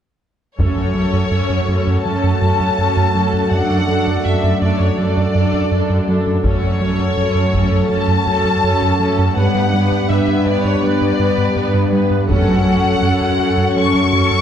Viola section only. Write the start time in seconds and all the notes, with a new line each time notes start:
0.59 C#4 A4
0.95 C#4 A4
1.32 C#4 A4
1.68 C#4 A4
2.05 C#4 A4
2.42 C#4 A4
2.79 C#4 A4
3.15 C#4 A4
3.51 D4 A4
3.88 D4 A4
4.24 D4 A4
4.61 D4 A4
4.98 D4 A4
5.34 D4 A4
5.71 D4 A4
6.08 D4 A4
6.44 C#4 A4
6.80 C#4 A4
7.17 C#4 A4
7.53 C#4 A4
7.90 C#4 A4
8.27 C#4 A4
8.63 C#4 A4
9.00 C#4 A4
9.36 B3 B4
9.73 B3 B4
10.10 B3 B4
10.47 B3 B4
10.83 B3 B4
11.19 B3 B4
11.56 B3 B4
11.92 B3 B4
12.28 C#4 A4
12.66 C#4 A4
13.02 C#4 A4
13.39 C#4 A4
13.75 C#4 A4
14.12 C#4 A4